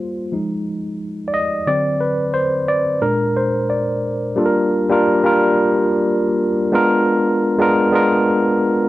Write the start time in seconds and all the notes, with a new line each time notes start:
Already playing: G3 A#3 F4 C5
0.32 F3 G#3 D#4
1.28 D5
1.34 D#5
1.67 D3 F#3 C4 D5
2.01 B4
2.34 C5
2.68 D5
3.01 A#2 G#3 D4 A#4
3.37 C5
3.70 D5
4.36 G3 A#3 D4 F4 A4
4.45 A#4
4.89 G3 A#3 D4 F4 A#4
5.23 G3 A#3 D4 F4 A#4
6.72 G#3 B3 D4 F4 A#4
7.58 G#3 B3 D4 F4 A#4
7.92 G#3 B3 D4 F4 A#4